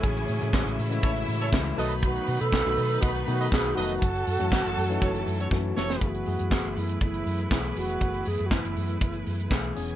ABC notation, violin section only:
X:1
M:4/4
L:1/8
Q:1/4=120
K:F#dor
V:1 name="Violin section"
[Eg]3 [Ee]4 [Bb]- | [Bb]8 | [Aa]8 | z8 |
z8 |]